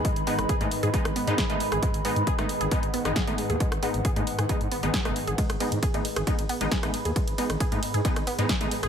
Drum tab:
RD |----------------|----------------|----------------|xxxxxxxxxxxxxxxx|
HH |xxoxxxoxxxoxxxox|xxoxxxoxxxoxxxox|xxoxxxoxxxoxxxox|xxoxxxoxxxoxxxox|
SD |---r-----r--o--r|-----r-----ro---|-r-----r----or--|-r-----r----or--|
BD |o---o---o---o---|o---o---o---o---|o---o---o---o---|o---o---o---o---|

RD |xxxxxxxxxxxxxxxx|
HH |xxoxxxoxxxoxxxox|
SD |---r-----r--o--r|
BD |o---o---o---o---|